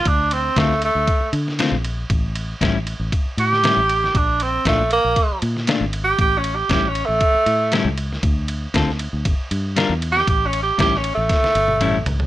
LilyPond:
<<
  \new Staff \with { instrumentName = "Tenor saxophone" } { \time 4/4 \key a \phrygian \tempo 4 = 118 d'8 c'8 a8 a4 r4. | r2 r8 g'4. | d'8 c'8 a8 bes4 r8 \tuplet 3/2 { r4 g'8 } | \tuplet 3/2 { g'8 cis'8 g'8 g'8 cis'8 a8~ } a4. r8 |
r2. \tuplet 3/2 { r4 g'8 } | \tuplet 3/2 { g'8 cis'8 g'8 g'8 cis'8 a8~ } a4. r8 | }
  \new Staff \with { instrumentName = "Clean electric guitar" } { \time 4/4 \key a \phrygian r4 <d a c' f'>8 r4. <d a c' f'>8 r8 | r4 <a, g cis' e'>8 r4. <a, g cis' e'>8 r8 | r4 <bes, a d' f'>8 r4. <bes, a d' f'>8 r8 | r4 <a, g cis' e'>8 r4. <a, g cis' e'>8 r8 |
r4 <d c' f' a'>8 r4. <g d' f' bes'>8 r8 | r4 <a, g cis' e'>8 r4. <a, g cis' e'>8 r8 | }
  \new Staff \with { instrumentName = "Fingered electric bass" } { \clef bass \time 4/4 \key a \phrygian d,4 d,8. d,16 r8 d8. bes,,8. | a,,4 a,,8. a,,16 r8 a,8. a,,8. | bes,,4 bes,,8. bes,,16 r8 bes,8. gis,,8. | a,,4 a,,8. a,,16 r8 a,8. cis,8. |
d,4 d,8. d,16 g,,16 r16 g,8. e,8. | a,,4 a,,8. a,,16 r8 g,,8 a,,8 cis,8 | }
  \new DrumStaff \with { instrumentName = "Drums" } \drummode { \time 4/4 <bd cymr>8 cymr8 <bd cymr sn>16 sn16 cymr8 <bd cymr>8 cymr16 sn16 <cymr sn>8 cymr8 | <bd cymr>8 cymr8 <bd cymr sn>8 cymr8 <bd cymr>8 cymr16 sn16 <cymr sn>8 cymr16 sn16 | <bd cymr>8 cymr8 <bd cymr sn>8 cymr8 <bd cymr>8 cymr16 sn16 <cymr sn>8 cymr8 | <bd cymr>8 cymr8 <bd cymr sn>8 cymr8 <bd cymr>8 cymr8 <cymr sn>8 cymr16 sn16 |
<bd cymr>8 cymr8 <bd cymr sn>16 sn16 cymr8 <bd cymr>8 cymr8 <cymr sn>8 cymr16 sn16 | <bd cymr>8 cymr8 <bd cymr sn>16 sn16 cymr8 <bd cymr sn>16 sn16 cymr16 tommh16 <cymr toml>8 <cymr tomfh>16 tomfh16 | }
>>